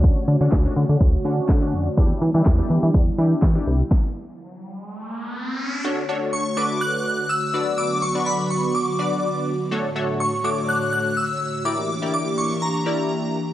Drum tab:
HH |--------|xxxxxxxx|--------|--------|
CP |--x---x-|--x---x-|--------|--------|
SD |--o---o-|--o---o-|o-------|--------|
BD |o-o-o-o-|o-o-o-o-|o-------|--------|

HH |--------|--------|--------|
CP |--------|--------|--------|
SD |--------|--------|--------|
BD |--------|--------|--------|